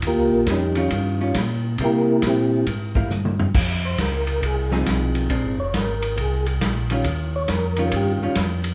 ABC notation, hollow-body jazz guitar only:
X:1
M:4/4
L:1/8
Q:"Swing" 1/4=137
K:Ebmix
V:1 name="Hollow-body jazz guitar"
z3 [E,G,DF]2 [E,G,DF] z2 | [G,B,=E] z4 [G,B,E] z2 | z4 z [F,CEA]3 | [A,C=D] z6 [E,G,_DF] |
z3 [E,G,DF]2 [E,G,DF] z2 |]